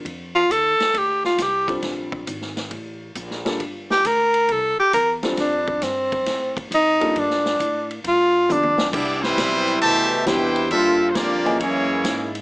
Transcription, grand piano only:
X:1
M:4/4
L:1/8
Q:"Swing" 1/4=135
K:F
V:1 name="Grand piano"
z6 z [G,CDFA]- | [G,CDFA]2 z4 z [G,B,DFA] | z6 z [G,CDFA]- | [G,CDFA]2 z4 z [G,B,DFA]- |
[G,B,DFA]2 z4 [G,=B,DFA]2 | [K:Gmix] z6 [C,G,DEG]2 | [G,_B,DFA] z2 [E,B,_D_A_e]3 z2 |]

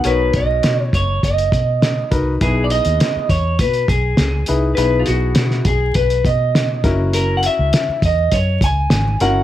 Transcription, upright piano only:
X:1
M:4/4
L:1/8
Q:1/4=102
K:Elyd
V:1 name="Upright piano"
[DFAc]3 z4 [DFAB] | [DEGB]3 z4 [DEGB] | [DEGB]3 z4 [CEFA]- | [CEFA]2 z4 z [CEFA] |]
V:2 name="Upright piano" clef=bass
B,,2 z6 | B,,3 z4 z | B,,3 z4 z | z8 |]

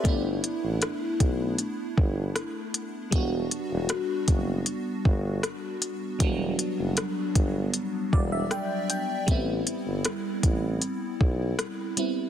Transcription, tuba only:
X:1
M:4/4
L:1/16
Q:1/4=78
K:Em
V:1 name="Tuba" clef=bass
G,,,2 z A,,, z2 B,,,2 z2 G,,,2 z4 | E,,,2 z E,,, z2 F,,,2 z2 G,,,2 z4 | E,,,2 z F,,, z2 G,,,2 z2 E,,,2 z4 | A,,,2 z G,,, z2 A,,,2 z2 B,,,2 z4 |]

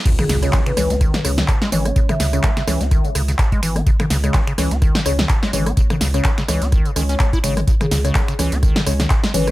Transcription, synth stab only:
X:1
M:4/4
L:1/16
Q:"Swing 16ths" 1/4=126
K:C#m
V:1 name="Synth stab"
z3 [G,Cc] z2 [G,Cc] z3 [G,Cc]2 z2 [G,Cc]2- | [G,Cc]3 [G,Cc] z2 [G,Cc] z8 z | z3 [G,Cc] z2 [G,Cc] z3 [G,Cc]2 z2 [G,Cc]2- | [G,Cc]3 [G,Cc] z2 [G,Cc] z3 [G,Cc] [G,Cc]2 z [G,Cc] z |
z3 [G,Cc] z2 [G,Cc] z3 [G,Cc]2 z2 [G,Cc]2 |]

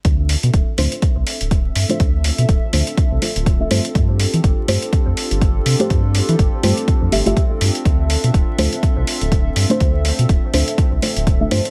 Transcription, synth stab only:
X:1
M:4/4
L:1/16
Q:"Swing 16ths" 1/4=123
K:Dm
V:1 name="Synth stab"
z6 [A,DFc] z8 [A,DFc]- | [A,DFc]6 [A,DFc]4 [A,DFc]2 z [A,DFe] [A,DFc] z | z6 [A,FGc] z8 [A,FGc]- | [A,FGc]6 [A,FGc]4 [A,FGe] [A,FGe]4- [A,FGe] |
z6 [A,DFc] z8 [A,DFc]- | [A,DFc]6 [A,DFc]4 [A,DFc]2 z [A,DFe] [A,DFc] z |]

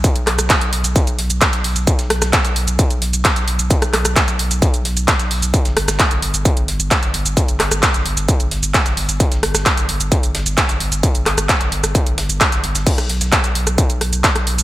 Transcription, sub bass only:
X:1
M:4/4
L:1/16
Q:1/4=131
K:Glyd
V:1 name="Sub bass" clef=bass
z B,,, B,,, B,,, z B,,, B,,, B,,, z B,,, B,,, B,,, z B,,, B,,, B,,, | z B,,, B,,, B,,, z B,,, B,,, B,,, z B,,, B,,, B,,, z B,,, B,,, B,,, | z B,,, B,,, B,,, z B,,, B,,, B,,, z B,,, B,,, B,,, z B,,, B,,, B,,, | z G,,, G,,, G,,, z G,,, G,,, G,,, z G,,, G,,, G,,, z G,,, G,,, G,,, |
z G,,, G,,, G,,, z G,,, G,,, G,,, z G,,, G,,, G,,, z G,,, G,,, G,,, | z G,,, G,,, G,,, z G,,, G,,, G,,, z G,,, G,,, G,,, z G,,, G,,, G,,, | z G,,, G,,, G,,, z G,,, G,,, G,,, z G,,, G,,, G,,, z G,,, G,,, G,,, | z B,,, B,,, B,,, z B,,, B,,, B,,, z B,,, B,,, B,,, z B,,, B,,, B,,, |]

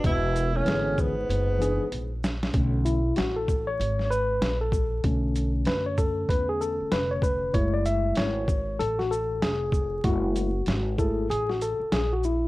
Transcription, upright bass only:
X:1
M:4/4
L:1/16
Q:"Swing 16ths" 1/4=96
K:Bdor
V:1 name="Upright bass" clef=bass
E,,,4 G,,,4 F,,,3 z ^A,,,4 | B,,,4 A,,,4 G,,,4 ^A,,,4 | B,,,4 F,,4 E,,3 z ^E,,,4 | F,,,4 G,,,4 A,,,4 ^E,,,4 |
F,,,4 G,,,4 A,,,3 z ^A,,,4 |]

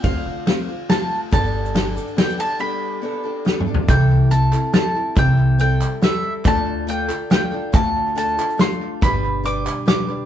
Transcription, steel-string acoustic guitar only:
X:1
M:3/4
L:1/8
Q:1/4=140
K:C
V:1 name="Steel-string acoustic guitar"
[D,A,CFc]2 [A,CFc] [CFc] [A,CFc]2 | [G,B,DGA]2 [B,DGA] [DGA] [B,DGA] [DGA] | [G,B,DGA]2 [B,DGA] [DGA] [B,DGA] [DGA] | [C,E,G,CEA]2 [G,CEA] [G,CEA] [G,CEA] [G,CEA] |
[C,E,G,CEA]2 [G,CEA]2 [G,CEA]2 | [D,A,DFA]2 [A,DFA] [DFA] [A,DFA] [DFA] | [D,A,DFA]2 [A,DFA] [DFA] [A,DFA]2 | [G,DGB]2 [G,DGB] [DGB] [G,DGB] [DGB] |]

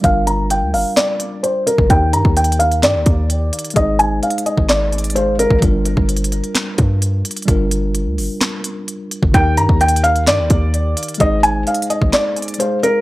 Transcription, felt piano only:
X:1
M:4/4
L:1/8
Q:1/4=129
K:Gphr
V:1 name="Felt piano"
f b g f d2 c B | g b g f d4 | e a f e d2 c B | z8 |
z8 | g b g f d4 | e a f e d2 c B |]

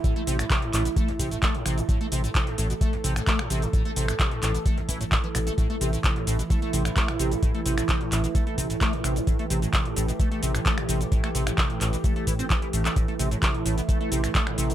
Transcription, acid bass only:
X:1
M:4/4
L:1/16
Q:1/4=130
K:Am
V:1 name="Acid bass" clef=bass
A,, A, C, A,, C, A,, A,, B,, A, A,,, C, A,, A, A,, C, A,, | A,, A, C, A,, C, A,, A,, B,, A, A,,, C, A,, A, A,, C, A,, | A,, A, C, A,, C, A,, A,, B,, A, A,,, E, A,, A,, E, B,, A, | A,, A, C, A,, C, A,, A,, B,, A, A, C, A,, A, A,, C, A,, |
A,, A, C, A,, C, A,, A,, B,, A, A, C, A,, A, A,, C, A,, | A,, A, C, A,, C, A,, A,, B,, A, A, C, A,, A, A,, C, A,, | A,, A, C, A,, C, A,, A,, B,, A, A, E, C E, E, A,, A, | A,, A, C, A,, C, A,, A,, B,, A, A, C, A,, A, A,, C, A,, |]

